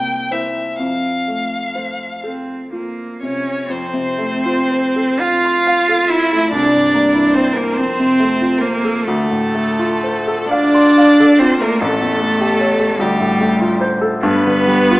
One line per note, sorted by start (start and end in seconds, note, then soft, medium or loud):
0.00 0.77 C2 soft
0.00 0.60 A#3 soft
0.00 0.33 G5 medium
0.31 0.68 A#3 soft
0.31 0.76 E4 soft
0.31 0.76 C5 soft
0.31 0.80 E5 medium
0.79 3.66 F2 soft
0.79 2.22 F5 medium
1.28 2.05 A3 soft
1.75 2.13 A3 soft
1.75 2.53 C5 soft
2.24 2.70 C4 soft
2.24 3.02 A4 soft
2.72 3.22 A#3 soft
2.72 3.52 F4 soft
3.22 3.71 C3 soft
3.22 3.67 C#4 medium
3.22 3.72 C#5 soft
3.70 6.48 F2 soft
3.70 5.22 C4 medium
3.70 5.19 C5 medium
3.93 4.33 C3 soft
4.18 4.60 A3 soft
4.45 4.86 F4 soft
4.71 5.11 C5 soft
4.96 5.35 A4 soft
5.17 6.11 F4 medium
5.17 6.09 F5 medium
5.17 5.57 F5 soft
5.45 5.80 C6 soft
5.67 6.02 F5 soft
5.89 6.23 A4 soft
6.07 6.53 E4 medium
6.07 6.44 F4 soft
6.07 6.50 E5 medium
6.33 6.54 A3 soft
6.51 7.74 C2 medium
6.51 7.37 D4 medium
6.51 7.33 D5 medium
6.73 7.07 G2 soft
6.94 7.28 A#3 soft
7.14 7.48 E4 soft
7.34 7.59 C4 medium
7.34 7.54 C5 medium
7.34 7.70 C5 soft
7.53 7.75 A#4 medium
7.53 7.77 A#4 soft
7.58 7.78 A#3 medium
7.74 9.02 F2 soft
7.74 8.62 C4 medium
7.74 8.59 C5 medium
7.99 8.32 C3 soft
8.20 8.54 A3 soft
8.41 8.76 F4 soft
8.58 9.06 A#3 medium
8.58 9.03 A#4 medium
8.63 8.97 C5 soft
8.84 9.06 A4 soft
9.04 11.76 D2 medium
9.04 10.48 A3 medium
9.04 10.49 A4 medium
9.31 9.68 A2 soft
9.55 9.92 A3 soft
9.79 10.17 F4 medium
10.03 10.41 C5 soft
10.28 10.65 A4 medium
10.48 11.40 D4 medium
10.48 11.41 D5 medium
10.48 10.88 F5 medium
10.74 11.10 C6 medium
10.98 11.32 F5 soft
11.20 11.53 A4 soft
11.39 11.59 C4 medium
11.39 11.73 F4 medium
11.39 11.62 C5 medium
11.60 11.81 A3 medium
11.60 11.82 A#3 medium
11.60 11.80 A#4 medium
11.80 12.96 A1 medium
11.80 12.99 A3 medium
11.80 13.02 A4 medium
12.01 12.31 E2 soft
12.20 12.51 A3 soft
12.40 12.71 G4 medium
12.61 12.92 C#5 medium
12.80 12.99 A4 medium
12.98 14.19 D2 medium
12.98 13.80 G3 medium
12.98 13.81 G4 medium
13.20 13.52 A2 medium
13.41 13.73 A3 soft
13.61 13.93 F4 medium
13.81 14.14 C5 medium
14.01 14.23 A4 medium
14.22 15.00 G2 medium
14.22 15.00 B3 loud
14.22 15.00 B4 medium
14.45 14.82 D3 soft
14.67 15.00 G3 medium
14.91 15.00 F4 medium